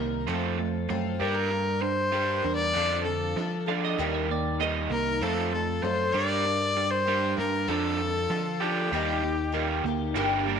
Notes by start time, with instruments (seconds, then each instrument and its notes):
Already playing: picked electric bass C2, overdriven electric guitar D#3 A#3, twelve-string acoustic guitar D#4 A#4
0.00 twelve-string acoustic guitar A#3
0.27 picked electric bass F2, overdriven electric guitar F3 A3 C4, twelve-string acoustic guitar F3 C4 F4 A4
0.58 overdriven electric guitar F3 A3
0.89 picked electric bass F#2, twelve-string acoustic guitar F3 C4 F4 A4, overdriven electric guitar F3 A3
1.20 picked electric bass G2, overdriven electric guitar G3 D4 G4, twelve-string acoustic guitar G3 A#3 D4 A#4, fiddle G4
1.34 fiddle A#4
1.50 overdriven electric guitar G3 D4
1.80 overdriven electric guitar G3 D4, fiddle C5
2.12 twelve-string acoustic guitar G3 A#3 D4 A#4, overdriven electric guitar G3 D4 G4
2.44 picked electric bass E2, overdriven electric guitar G3 D4, twelve-string acoustic guitar G3 A#3 D4 A#4
2.55 fiddle D5
2.74 picked electric bass F2, overdriven electric guitar D3 F3 D4, twelve-string acoustic guitar F3 D4 F4 A4
3.04 overdriven electric guitar D3 F3, fiddle A4
3.36 overdriven electric guitar D3 F3, picked electric bass F3, twelve-string acoustic guitar F3 D4 F4 A4
3.66 overdriven electric guitar D3 F3 D4, twelve-string acoustic guitar D4 F4 A4, clean electric guitar F5
3.85 clean electric guitar D#5
3.98 picked electric bass D#2, overdriven electric guitar D#3 G3 A#3, twelve-string acoustic guitar D#3 G3 A#3 D#4 A#4, clean electric guitar D5
4.14 clean electric guitar D#5
4.29 overdriven electric guitar D#3 A#3, clean electric guitar D5
4.60 overdriven electric guitar D#3 G3 A#3, twelve-string acoustic guitar G3 A#3 D#4 A#4, clean electric guitar D#5
4.90 picked electric bass C2, overdriven electric guitar D#3 A#3, twelve-string acoustic guitar A#3 D#4 A#4, fiddle A#4
5.21 picked electric bass F2, twelve-string acoustic guitar F3 C4 F4 A4, overdriven electric guitar F3 A3 C4, fiddle A4
5.52 overdriven electric guitar F3 A3, fiddle A4
5.82 picked electric bass F#2, overdriven electric guitar F3 A3, twelve-string acoustic guitar F3 C4 F4 A4, fiddle C5
6.12 picked electric bass G2, overdriven electric guitar G3 D4 G4, twelve-string acoustic guitar G3 A#3 D4 A#4, fiddle D5
6.45 overdriven electric guitar G3 D4
6.77 overdriven electric guitar G3 D4
6.90 fiddle C5
7.05 twelve-string acoustic guitar G3 A#3 D4 A#4, overdriven electric guitar G3 D4 G4
7.37 picked electric bass G2, twelve-string acoustic guitar G3 A#3 D4 A#4, overdriven electric guitar G3 D4, fiddle A#4
7.68 picked electric bass F2, overdriven electric guitar D3 F3 D4, twelve-string acoustic guitar F3 D4 F4 A4, fiddle A4
7.99 overdriven electric guitar D3 F3
8.30 overdriven electric guitar D3 F3, twelve-string acoustic guitar F3 D4 F4 A4, picked electric bass F3
8.60 overdriven electric guitar D3 F3 D4, twelve-string acoustic guitar D4 F4 A4, fiddle G4
8.92 picked electric bass D#2, overdriven electric guitar D#3 G3 A#3, twelve-string acoustic guitar D#3 G3 A#3 D#4 G4
9.23 overdriven electric guitar D#3 A#3
9.52 overdriven electric guitar D#3 G3 A#3, twelve-string acoustic guitar G3 A#3 D#4 G4
9.84 picked electric bass D2, overdriven electric guitar D#3 A#3, twelve-string acoustic guitar D#4 G4
9.88 twelve-string acoustic guitar A#3
10.15 picked electric bass G1, overdriven electric guitar G2 D3 G3 A#3 D4 A#4, twelve-string acoustic guitar G2 D3 G3 A#3 D4 G4, string section D4 G4 A#4 D5
10.46 overdriven electric guitar G3 A#3 D4 A#4